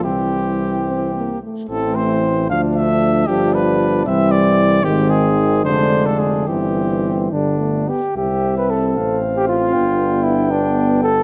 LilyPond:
<<
  \new Staff \with { instrumentName = "Trumpet" } { \time 6/8 \key c \mixolydian \tempo 4. = 75 g'2~ g'8 r8 | \key c \major a'8 c''4 f''8 e''4 | g'8 b'4 e''8 d''4 | g'8 aes'4 c''8. a'16 aes'8 |
g'4. r4. | e''4. f''4. | g''2. | }
  \new Staff \with { instrumentName = "Flugelhorn" } { \time 6/8 \key c \mixolydian c'2~ c'8 r8 | \key c \major c'4. d'4. | d'4. c'4. | c'4. d'4. |
c'4. d'4 g'8 | g'8. b'16 a'4~ a'16 g'16 f'8~ | f'4 e'8 d'4 a'8 | }
  \new Staff \with { instrumentName = "French horn" } { \time 6/8 \key c \mixolydian g4. c'8 bes8 a8 | \key c \major a4. a4. | g4. g4. | aes4. aes4. |
g4. g8 a8 b8 | r4. c'4. | d'4. b4. | }
  \new Staff \with { instrumentName = "Trombone" } { \clef bass \time 6/8 \key c \mixolydian e2~ e8 r8 | \key c \major e4. f4. | f4. e4. | ees4. d4. |
e4. d4 r8 | c'2. | b2. | }
  \new Staff \with { instrumentName = "Tuba" } { \clef bass \time 6/8 \key c \mixolydian c,2~ c,8 r8 | \key c \major a,,4. d,4. | g,,4. c,4. | aes,,4. f,,4. |
g,,4. g,,4 r8 | c,4. a,,4. | g,,2. | }
>>